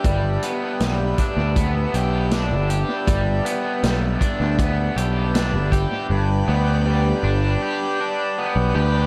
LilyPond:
<<
  \new Staff \with { instrumentName = "Harmonium" } { \time 4/4 \key g \major \tempo 4 = 79 <g' b' e'' g''>1~ | <g' b' e'' g''>1 | <g' b' d'' g''>1 | }
  \new Staff \with { instrumentName = "Overdriven electric guitar" } { \time 4/4 \key g \major <g b d' g'>8 b8 g8 d'8 b8 g'8 d'8 g'8 | g8 b8 g8 d'8 b8 g'8 d'8 g'8 | g,8 b8 g8 d'8 g'8 d'8 b8 g'8 | }
  \new Staff \with { instrumentName = "Picked electric bass" } { \clef bass \time 4/4 \key g \major g,,8 r8 b,,8 r16 d,8. b,,8. g,,8 r16 | g,,8 r8 b,,8 r16 d,8. b,,8. g,,8 r16 | g,,8 d,4 g,,8 r4 r16 b,,16 d,8 | }
  \new DrumStaff \with { instrumentName = "Drums" } \drummode { \time 4/4 <hh bd>8 hh8 <hh sn>8 <hh bd>8 <hh bd>8 hh8 <hh sn>8 hh8 | <hh bd>8 hh8 <hh sn>8 <hh bd>8 <hh bd>8 hh8 <hh sn>8 <hh bd>8 | r4 r4 r4 r4 | }
>>